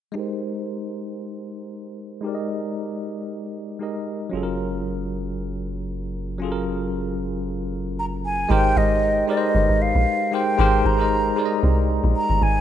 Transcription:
0.12 2.18 G#3 medium
0.12 2.19 D#4 medium
0.12 2.20 G4 medium
0.18 2.21 A#4 medium
0.18 2.22 C5 medium
2.21 3.76 G#3 medium
2.21 3.77 D#4 medium
2.21 3.78 G4 medium
2.26 3.79 A#4 medium
2.26 2.33 D5 medium
2.35 3.82 D#5 medium
3.79 4.32 G#3 medium
3.79 4.33 D#4 soft
3.79 4.33 G4 soft
3.79 4.34 A#4 medium
3.79 4.34 D#5 medium
4.30 8.46 F#1 medium
4.30 6.36 F#3 medium
4.30 6.37 C#4 medium
4.30 6.38 F4 medium
4.35 6.39 G#4 medium
4.35 4.42 A4 medium
4.43 6.43 A#4 medium
6.38 8.45 F#3 medium
6.38 8.45 C#4 medium
6.38 8.46 F4 medium
6.44 8.47 G#4 medium
6.44 6.50 A4 medium
6.52 8.50 A#4 medium
7.99 8.05 A#5 loud
8.25 8.53 G#5 loud
8.49 8.74 G#1 loud
8.49 9.13 G#3 loud
8.49 9.14 D#4 loud
8.49 9.14 G4 medium
8.49 9.14 A#4 medium
8.49 9.15 C5 loud
8.49 8.79 G5 loud
8.76 9.23 G#1 loud
8.76 9.29 D#5 loud
9.27 10.12 G#3 medium
9.27 10.12 D#4 medium
9.27 10.13 G4 medium
9.27 10.13 A#4 medium
9.27 9.37 B4 medium
9.27 9.83 D#5 loud
9.37 10.17 C5 medium
9.55 9.68 G1 loud
9.69 9.93 G#1 medium
9.82 10.35 F5 loud
9.95 10.06 A#1 loud
10.32 10.54 G#3 medium
10.32 10.54 D#4 medium
10.32 10.54 G4 medium
10.32 10.55 A#4 medium
10.32 10.55 C5 medium
10.32 10.88 G5 loud
10.57 10.82 G#1 loud
10.57 10.90 G#3 loud
10.57 10.91 D#4 medium
10.57 10.91 G4 medium
10.57 10.91 A#4 medium
10.57 10.92 C5 loud
10.85 11.32 G#1 medium
10.85 11.90 A#5 loud
10.98 11.29 G#3 medium
10.98 11.30 D#4 medium
10.98 11.30 G4 medium
10.98 11.31 A#4 medium
10.98 11.31 D#5 medium
11.36 12.20 G#3 medium
11.36 12.21 D#4 medium
11.36 12.21 G4 medium
11.36 12.22 A#4 medium
11.36 11.45 D5 medium
11.46 12.25 D#5 medium
11.63 12.00 C2 loud
12.04 12.14 A#1 loud
12.16 12.44 A#5 loud
12.30 12.40 G1 loud
12.42 12.61 G#1 loud
12.42 12.61 G#5 loud

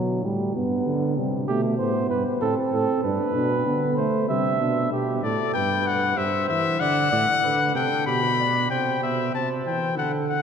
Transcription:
0.00 0.26 B2 medium
0.00 0.24 F#3 medium
0.24 0.54 A2 medium
0.24 0.54 G3 medium
0.55 0.85 G2 medium
0.55 1.16 B3 medium
0.86 1.19 D3 medium
1.17 1.48 C3 medium
1.17 1.47 G3 medium
1.48 1.81 B2 medium
1.48 1.78 A3 medium
1.48 1.62 G4 medium
1.79 2.10 A2 medium
1.79 2.40 B3 medium
1.79 2.09 C5 medium
2.10 2.24 G2 medium
2.10 2.24 B4 medium
2.41 2.56 A2 medium
2.41 3.02 C4 medium
2.41 2.55 A4 medium
2.72 2.87 A2 medium
2.72 3.03 A4 medium
3.04 3.18 G2 medium
3.04 3.34 D4 medium
3.04 3.96 B4 medium
3.35 3.66 B2 medium
3.35 3.66 D4 medium
3.66 4.07 D3 medium
3.66 3.97 B3 medium
3.97 4.29 A3 medium
3.97 4.28 C5 medium
4.29 4.61 C3 medium
4.29 4.60 G3 medium
4.29 4.91 E5 medium
4.60 4.90 B2 medium
4.60 4.91 D4 medium
4.91 5.22 B2 medium
4.91 5.23 G4 medium
5.23 5.37 A2 medium
5.23 5.57 A4 medium
5.23 5.53 D5 medium
5.54 6.17 G2 medium
5.54 6.16 B4 medium
5.54 5.88 G5 medium
5.87 6.19 F#5 medium
6.17 6.51 G2 medium
6.17 6.79 C5 medium
6.17 6.48 E5 medium
6.48 6.80 E3 medium
6.48 6.81 E5 medium
6.80 7.12 D3 medium
6.80 7.11 D5 medium
6.80 7.74 F#5 medium
7.11 7.27 A2 medium
7.11 7.26 D5 medium
7.43 7.74 D3 medium
7.43 7.77 B4 medium
7.75 7.89 C3 medium
7.75 8.06 A4 medium
7.75 8.06 G5 medium
8.07 8.69 B2 medium
8.07 8.21 G4 medium
8.07 8.69 B5 medium
8.38 8.70 D5 medium
8.70 9.00 C3 medium
8.70 9.31 C5 medium
8.70 9.00 G5 medium
9.03 9.33 B2 medium
9.03 9.34 E5 medium
9.34 9.66 C3 medium
9.34 9.97 C5 medium
9.34 9.49 A5 medium
9.66 9.99 E3 medium
9.66 9.97 G5 medium
9.97 10.42 D3 medium
9.97 10.42 A4 medium
9.97 10.12 F#5 medium
10.29 10.42 F#5 medium

